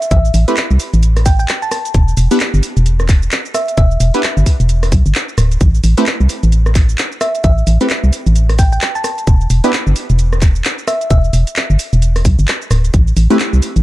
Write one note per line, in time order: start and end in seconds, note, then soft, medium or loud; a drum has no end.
0.02 closed hi-hat soft
0.02 shaker soft
0.11 0.31 A1 loud
0.11 0.32 E5 loud
0.11 kick loud
0.11 closed hi-hat medium
0.11 shaker soft
0.25 shaker soft
0.34 0.45 A1 loud
0.34 open hi-hat loud
0.34 shaker medium
0.48 0.55 A3 medium
0.48 0.55 C4 medium
0.48 0.55 E4 medium
0.48 0.55 G4 medium
0.48 0.55 B4 medium
0.48 closed hi-hat medium
0.48 shaker soft
0.57 clap loud
0.57 closed hi-hat medium
0.57 shaker soft
0.71 0.78 C2 medium
0.71 shaker soft
0.80 open hi-hat loud
0.80 shaker medium
0.94 1.46 A1 loud
0.94 closed hi-hat soft
0.94 shaker soft
1.03 closed hi-hat medium
1.03 shaker soft
1.17 cross-stick medium
1.17 open hi-hat medium
1.17 shaker soft
1.26 1.35 G5 medium
1.26 kick loud
1.26 open hi-hat loud
1.26 shaker medium
1.39 1.45 G5 medium
1.39 shaker soft
1.48 clap loud
1.48 closed hi-hat medium
1.48 shaker soft
1.62 1.68 A5 medium
1.62 shaker soft
1.71 1.80 A5 medium
1.71 cross-stick medium
1.71 open hi-hat loud
1.71 shaker medium
1.85 closed hi-hat soft
1.85 shaker soft
1.94 2.14 E1 loud
1.94 kick loud
1.94 closed hi-hat medium
1.94 shaker soft
2.08 shaker soft
2.17 2.29 E1 loud
2.17 open hi-hat loud
2.17 shaker medium
2.31 2.39 B3 loud
2.31 2.39 D4 medium
2.31 2.39 E4 medium
2.31 2.39 G4 medium
2.31 2.39 B4 loud
2.31 closed hi-hat medium
2.31 shaker soft
2.40 clap loud
2.40 closed hi-hat medium
2.40 shaker soft
2.54 2.61 G1 medium
2.54 shaker soft
2.63 open hi-hat loud
2.63 shaker medium
2.77 3.29 E1 loud
2.77 closed hi-hat soft
2.77 shaker soft
2.86 closed hi-hat medium
2.86 shaker soft
3.00 cross-stick medium
3.00 shaker soft
3.09 kick loud
3.09 clap medium
3.09 open hi-hat loud
3.09 shaker medium
3.23 shaker soft
3.32 clap loud
3.32 closed hi-hat medium
3.32 shaker soft
3.45 shaker soft
3.54 3.75 E5 medium
3.54 cross-stick medium
3.54 open hi-hat loud
3.54 shaker medium
3.68 closed hi-hat soft
3.68 shaker soft
3.77 3.97 E1 loud
3.77 3.98 E5 medium
3.77 kick loud
3.77 closed hi-hat medium
3.77 shaker soft
3.91 shaker soft
4.00 4.12 E1 loud
4.00 open hi-hat loud
4.00 shaker medium
4.14 4.22 B3 medium
4.14 4.22 D4 medium
4.14 4.22 E4 medium
4.14 4.22 G4 medium
4.14 4.22 B4 medium
4.14 closed hi-hat medium
4.14 shaker soft
4.23 clap loud
4.23 closed hi-hat medium
4.23 shaker soft
4.37 4.45 G1 medium
4.37 shaker soft
4.46 kick medium
4.46 open hi-hat loud
4.46 shaker medium
4.60 4.92 E1 loud
4.60 closed hi-hat soft
4.60 shaker soft
4.69 closed hi-hat medium
4.69 shaker soft
4.83 cross-stick medium
4.83 open hi-hat medium
4.83 shaker soft
4.92 5.03 B1 loud
4.92 kick loud
4.92 open hi-hat loud
4.92 shaker medium
5.06 5.13 G1 loud
5.06 shaker soft
5.15 clap loud
5.15 closed hi-hat medium
5.15 shaker soft
5.29 shaker soft
5.38 5.58 D1 loud
5.38 cross-stick medium
5.38 open hi-hat loud
5.38 shaker medium
5.52 closed hi-hat soft
5.52 shaker soft
5.61 5.80 A1 loud
5.61 kick loud
5.61 closed hi-hat medium
5.61 shaker soft
5.75 shaker soft
5.84 5.95 A1 loud
5.84 open hi-hat loud
5.84 shaker medium
5.97 6.05 A3 loud
5.97 6.05 C4 medium
5.97 6.05 E4 medium
5.97 6.05 G4 medium
5.97 6.05 B4 loud
5.97 closed hi-hat medium
5.97 shaker soft
6.06 clap loud
6.06 closed hi-hat medium
6.06 shaker soft
6.20 6.28 C2 medium
6.20 shaker soft
6.29 open hi-hat loud
6.29 shaker medium
6.43 6.96 A1 loud
6.43 closed hi-hat soft
6.43 shaker soft
6.52 closed hi-hat medium
6.52 shaker soft
6.66 cross-stick medium
6.66 shaker soft
6.75 kick loud
6.75 clap medium
6.75 open hi-hat loud
6.75 shaker medium
6.89 shaker soft
6.98 clap loud
6.98 closed hi-hat medium
6.98 shaker soft
7.12 shaker soft
7.21 7.42 E5 medium
7.21 cross-stick medium
7.21 open hi-hat loud
7.21 shaker medium
7.35 closed hi-hat soft
7.35 shaker soft
7.44 7.64 A1 loud
7.44 7.65 E5 loud
7.44 kick loud
7.44 closed hi-hat medium
7.44 shaker soft
7.58 shaker soft
7.67 7.78 A1 loud
7.67 open hi-hat loud
7.67 shaker medium
7.81 7.88 A3 medium
7.81 7.88 C4 medium
7.81 7.88 E4 medium
7.81 7.88 G4 medium
7.81 7.88 B4 medium
7.81 closed hi-hat medium
7.81 shaker soft
7.90 clap loud
7.90 closed hi-hat medium
7.90 shaker soft
8.04 8.11 C2 medium
8.04 shaker soft
8.13 open hi-hat loud
8.13 shaker medium
8.27 8.79 A1 loud
8.27 closed hi-hat soft
8.27 shaker soft
8.36 closed hi-hat medium
8.36 shaker soft
8.49 cross-stick medium
8.49 open hi-hat medium
8.49 shaker soft
8.59 8.67 G5 medium
8.59 kick loud
8.59 open hi-hat loud
8.59 shaker medium
8.72 8.78 G5 medium
8.72 shaker soft
8.81 clap loud
8.81 closed hi-hat medium
8.81 shaker soft
8.95 9.01 A5 loud
8.95 shaker soft
9.04 9.13 A5 medium
9.04 cross-stick medium
9.04 open hi-hat loud
9.04 shaker medium
9.18 closed hi-hat soft
9.18 shaker soft
9.27 9.47 E1 loud
9.27 kick loud
9.27 closed hi-hat medium
9.27 shaker soft
9.41 shaker soft
9.50 9.62 E1 loud
9.50 open hi-hat loud
9.50 shaker medium
9.64 9.71 B3 medium
9.64 9.71 D4 medium
9.64 9.71 E4 medium
9.64 9.71 G4 medium
9.64 9.71 B4 loud
9.64 closed hi-hat medium
9.64 shaker soft
9.73 clap loud
9.73 closed hi-hat medium
9.73 shaker soft
9.87 9.94 G1 medium
9.87 shaker soft
9.96 open hi-hat loud
9.96 shaker medium
10.10 10.62 E1 loud
10.10 closed hi-hat soft
10.10 shaker soft
10.19 closed hi-hat medium
10.19 shaker soft
10.33 cross-stick medium
10.33 shaker soft
10.42 kick loud
10.42 clap medium
10.42 open hi-hat loud
10.42 shaker medium
10.55 shaker soft
10.65 clap loud
10.65 closed hi-hat medium
10.65 shaker soft
10.78 shaker soft
10.88 11.08 E5 medium
10.88 cross-stick medium
10.88 open hi-hat loud
10.88 shaker medium
11.01 closed hi-hat soft
11.01 shaker soft
11.10 11.30 E1 loud
11.10 11.31 E5 medium
11.10 kick loud
11.10 closed hi-hat medium
11.10 shaker soft
11.24 shaker soft
11.33 11.45 E1 loud
11.33 open hi-hat loud
11.33 shaker medium
11.47 closed hi-hat medium
11.47 shaker soft
11.56 clap loud
11.56 closed hi-hat medium
11.56 shaker soft
11.70 11.78 G1 medium
11.70 shaker soft
11.79 open hi-hat loud
11.79 shaker medium
11.93 12.24 E1 loud
11.93 closed hi-hat soft
11.93 shaker soft
12.02 closed hi-hat medium
12.02 shaker soft
12.16 cross-stick medium
12.16 open hi-hat medium
12.16 shaker soft
12.25 12.36 B1 loud
12.25 kick loud
12.25 open hi-hat loud
12.25 shaker medium
12.39 12.46 G1 loud
12.39 shaker soft
12.48 clap loud
12.48 closed hi-hat medium
12.48 shaker soft
12.62 shaker soft
12.71 12.90 D1 loud
12.71 cross-stick medium
12.71 open hi-hat loud
12.71 shaker medium
12.85 closed hi-hat soft
12.85 shaker soft
12.94 13.13 A1 loud
12.94 kick loud
12.94 closed hi-hat medium
12.94 shaker soft
13.08 shaker soft
13.17 13.28 A1 loud
13.17 open hi-hat loud
13.17 shaker medium
13.30 13.38 A3 loud
13.30 13.38 C4 medium
13.30 13.38 E4 medium
13.30 13.38 G4 medium
13.30 13.38 B4 loud
13.30 closed hi-hat medium
13.30 shaker soft
13.39 clap loud
13.39 closed hi-hat medium
13.39 shaker soft
13.53 13.61 C2 medium
13.53 shaker soft
13.62 open hi-hat loud
13.62 shaker medium
13.76 13.83 A1 loud
13.76 closed hi-hat soft
13.76 shaker soft